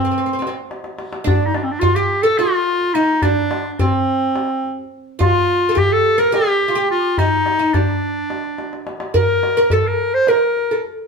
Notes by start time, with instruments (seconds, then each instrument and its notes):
Already playing: clarinet C4
0.05 oud C4
0.11 oud C4
0.18 oud C4
0.26 oud C4
0.33 oud C4
0.39 oud C4, darbuka tek
0.47 oud C4
0.71 darbuka tek
0.84 darbuka ka
0.99 darbuka tek
1.13 darbuka ka
1.24 oud D4, clarinet D4, darbuka dum
1.41 darbuka ka
1.46 clarinet D#4
1.54 clarinet D4, darbuka tek
1.64 clarinet C4
1.71 clarinet D4
1.80 clarinet F4, oud F4, darbuka dum
1.95 clarinet G4, oud G4
2.23 clarinet A4, oud A4
2.38 clarinet F4, oud F4, darbuka tek
2.81 darbuka ka
2.94 clarinet D#4, oud D#4, darbuka ka
3.22 oud D4, clarinet D4, darbuka dum
3.37 darbuka ka
3.51 darbuka tek
3.73 clarinet D4
3.79 oud C4, clarinet C4, darbuka dum
4.36 darbuka tek
4.64 darbuka ka
4.79 darbuka ka
5.19 oud F4, clarinet F4, darbuka dum
5.36 darbuka ka
5.69 oud A4
5.75 oud G4, clarinet G4, darbuka dum
5.93 clarinet A4
6.18 oud A#4, clarinet A#4
6.32 oud G4, clarinet G4, darbuka tek
6.62 darbuka ka
6.68 oud F4
6.75 oud G4, darbuka ka
6.90 clarinet F4, darbuka ka
7.18 clarinet D#4, oud D#4, darbuka dum
7.32 darbuka ka
7.46 darbuka tek
7.59 oud D#4
7.74 clarinet D4, oud D4, darbuka dum
8.30 darbuka tek
8.58 darbuka tek
8.73 darbuka ka
8.87 darbuka tek
9.00 darbuka ka
9.14 oud A#4, clarinet A#4, darbuka dum
9.29 darbuka ka
9.43 darbuka tek
9.57 oud A#4
9.70 oud A4, clarinet A4, darbuka dum
9.87 clarinet A#4
10.14 clarinet C5
10.27 oud A#4, clarinet A#4, darbuka tek
10.57 darbuka ka
10.71 oud A4, darbuka ka
10.85 darbuka ka